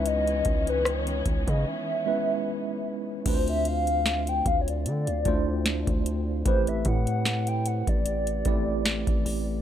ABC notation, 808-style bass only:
X:1
M:4/4
L:1/16
Q:"Swing 16ths" 1/4=75
K:Ddor
V:1 name="808-style bass" clef=bass
^C,,2 C,,4 C,, ^C, z8 | D,,6 D,,2 D, D,, D,,3 D,,3 | A,,,2 A,,4- A,, A,,,3 A,,,3 A,,, A,,,2 |]